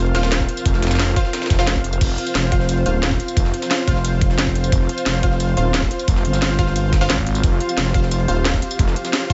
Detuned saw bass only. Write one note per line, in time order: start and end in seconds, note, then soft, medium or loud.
0.00 0.13 F1 loud
0.15 0.47 D#1 medium
0.66 0.81 F1 medium
0.83 1.15 F1 medium
1.50 2.00 F1 medium
2.01 2.17 F1 medium
2.86 3.18 D#1 medium
3.37 3.52 F1 loud
4.72 4.88 F1 loud
5.57 5.90 D#1 loud
6.08 6.24 F1 loud
7.44 7.59 F1 loud
8.28 8.61 D#1 medium
8.79 8.95 F1 loud